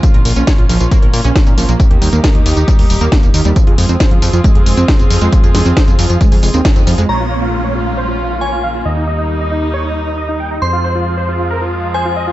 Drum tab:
CC |----------------|----------------|----------------|----------------|
HH |xxoxxxoxxxoxxxox|xxoxxxoxxooxxxox|xxoxxxoxxxoxxxox|xxoxxxoxxooxxxox|
TB |x-xxx-xxx-xxxxxx|x-xxx-xxx-xxxxxx|x-xxx-xxx-xxxxxx|xxxxxxxxxxxxxxxx|
SD |----o-------o---|----o-------o---|----o-------o---|--o-o-------o---|
BD |o---o---o---o---|o---o---o---o---|o---o---o---o---|o---o---o---o---|

CC |x---------------|----------------|----------------|
HH |----------------|----------------|----------------|
TB |----------------|----------------|----------------|
SD |----------------|----------------|----------------|
BD |----------------|----------------|----------------|